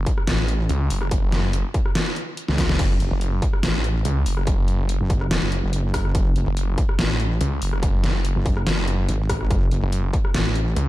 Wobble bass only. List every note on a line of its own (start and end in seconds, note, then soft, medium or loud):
0.28 0.68 A1 loud
2.48 2.78 C#2 loud
2.79 2.99 F#1 loud
3.00 3.10 F#1 loud
3.63 4.04 A1 medium
5.00 5.40 F#1 loud
5.42 5.61 F#1 loud
5.63 6.13 F#1 loud
6.15 6.34 F#1 loud
6.36 6.45 F#1 loud
6.99 7.39 A1 loud
8.36 8.65 F#1 loud
9.08 9.49 G#1 loud
9.51 9.70 F#1 medium
9.71 9.81 F#1 loud
10.34 10.75 A1 loud